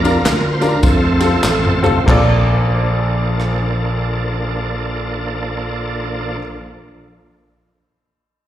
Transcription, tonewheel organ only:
0, 0, Header, 1, 2, 480
1, 0, Start_track
1, 0, Key_signature, -2, "major"
1, 0, Tempo, 568182
1, 703, Tempo, 621762
1, 1663, Time_signature, 4, 2, 24, 8
1, 1663, Tempo, 662252
1, 6301, End_track
2, 0, Start_track
2, 0, Title_t, "Tonewheel organ"
2, 0, Program_c, 0, 16
2, 0, Note_on_c, 0, 58, 56
2, 0, Note_on_c, 0, 62, 77
2, 0, Note_on_c, 0, 65, 76
2, 0, Note_on_c, 0, 70, 108
2, 93, Note_off_c, 0, 58, 0
2, 97, Note_off_c, 0, 62, 0
2, 182, Note_off_c, 0, 70, 0
2, 208, Note_on_c, 0, 70, 99
2, 443, Note_on_c, 0, 72, 72
2, 445, Note_off_c, 0, 70, 0
2, 515, Note_on_c, 0, 70, 102
2, 519, Note_off_c, 0, 72, 0
2, 674, Note_off_c, 0, 65, 0
2, 688, Note_off_c, 0, 70, 0
2, 706, Note_on_c, 0, 57, 57
2, 706, Note_on_c, 0, 69, 89
2, 709, Note_on_c, 0, 60, 61
2, 714, Note_on_c, 0, 65, 68
2, 1446, Note_off_c, 0, 69, 0
2, 1634, Note_off_c, 0, 57, 0
2, 1638, Note_off_c, 0, 60, 0
2, 1639, Note_off_c, 0, 65, 0
2, 1667, Note_on_c, 0, 53, 70
2, 1668, Note_on_c, 0, 58, 65
2, 1668, Note_on_c, 0, 62, 58
2, 1668, Note_on_c, 0, 69, 75
2, 4774, Note_off_c, 0, 53, 0
2, 4776, Note_off_c, 0, 58, 0
2, 4776, Note_off_c, 0, 62, 0
2, 4776, Note_off_c, 0, 69, 0
2, 6301, End_track
0, 0, End_of_file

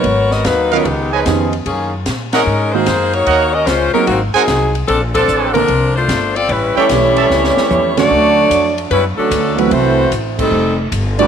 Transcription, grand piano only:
0, 0, Header, 1, 2, 480
1, 0, Start_track
1, 0, Tempo, 402955
1, 48, Time_signature, 4, 2, 24, 8
1, 13428, End_track
2, 0, Start_track
2, 0, Title_t, "Grand piano"
2, 0, Program_c, 0, 0
2, 856, Note_on_c, 0, 51, 53
2, 864, Note_on_c, 0, 59, 53
2, 870, Note_on_c, 0, 61, 50
2, 873, Note_on_c, 0, 65, 58
2, 998, Note_off_c, 0, 51, 0
2, 1002, Note_off_c, 0, 59, 0
2, 1005, Note_off_c, 0, 61, 0
2, 1006, Note_off_c, 0, 65, 0
2, 1498, Note_on_c, 0, 51, 54
2, 1504, Note_on_c, 0, 59, 54
2, 1513, Note_on_c, 0, 61, 50
2, 1517, Note_on_c, 0, 67, 55
2, 1784, Note_off_c, 0, 51, 0
2, 1787, Note_off_c, 0, 59, 0
2, 1791, Note_off_c, 0, 61, 0
2, 1794, Note_off_c, 0, 67, 0
2, 3259, Note_on_c, 0, 56, 57
2, 3260, Note_on_c, 0, 51, 62
2, 3266, Note_on_c, 0, 58, 59
2, 3276, Note_on_c, 0, 66, 66
2, 3401, Note_off_c, 0, 56, 0
2, 3402, Note_off_c, 0, 51, 0
2, 3405, Note_off_c, 0, 58, 0
2, 3410, Note_off_c, 0, 66, 0
2, 4695, Note_on_c, 0, 54, 58
2, 4700, Note_on_c, 0, 58, 55
2, 4708, Note_on_c, 0, 60, 54
2, 4711, Note_on_c, 0, 68, 64
2, 4840, Note_off_c, 0, 54, 0
2, 4843, Note_off_c, 0, 58, 0
2, 4846, Note_off_c, 0, 60, 0
2, 4848, Note_off_c, 0, 68, 0
2, 6606, Note_on_c, 0, 50, 61
2, 6614, Note_on_c, 0, 58, 56
2, 6615, Note_on_c, 0, 60, 57
2, 6630, Note_on_c, 0, 69, 68
2, 6755, Note_off_c, 0, 50, 0
2, 6759, Note_off_c, 0, 58, 0
2, 6760, Note_off_c, 0, 60, 0
2, 6767, Note_off_c, 0, 69, 0
2, 8223, Note_on_c, 0, 52, 52
2, 8229, Note_on_c, 0, 57, 52
2, 8237, Note_on_c, 0, 61, 46
2, 8242, Note_on_c, 0, 67, 60
2, 8507, Note_off_c, 0, 52, 0
2, 8510, Note_off_c, 0, 57, 0
2, 8514, Note_off_c, 0, 61, 0
2, 8516, Note_off_c, 0, 67, 0
2, 9494, Note_on_c, 0, 50, 65
2, 9503, Note_on_c, 0, 57, 57
2, 9506, Note_on_c, 0, 61, 56
2, 9513, Note_on_c, 0, 66, 68
2, 9638, Note_off_c, 0, 50, 0
2, 9642, Note_off_c, 0, 57, 0
2, 9644, Note_off_c, 0, 61, 0
2, 9647, Note_off_c, 0, 66, 0
2, 11408, Note_on_c, 0, 52, 62
2, 11411, Note_on_c, 0, 54, 62
2, 11414, Note_on_c, 0, 57, 62
2, 11418, Note_on_c, 0, 60, 53
2, 11425, Note_on_c, 0, 66, 73
2, 11553, Note_off_c, 0, 52, 0
2, 11555, Note_off_c, 0, 54, 0
2, 11557, Note_off_c, 0, 57, 0
2, 11559, Note_off_c, 0, 60, 0
2, 11562, Note_off_c, 0, 66, 0
2, 13329, Note_on_c, 0, 52, 59
2, 13329, Note_on_c, 0, 55, 59
2, 13336, Note_on_c, 0, 57, 61
2, 13342, Note_on_c, 0, 62, 54
2, 13348, Note_on_c, 0, 66, 67
2, 13428, Note_off_c, 0, 52, 0
2, 13428, Note_off_c, 0, 55, 0
2, 13428, Note_off_c, 0, 57, 0
2, 13428, Note_off_c, 0, 62, 0
2, 13428, Note_off_c, 0, 66, 0
2, 13428, End_track
0, 0, End_of_file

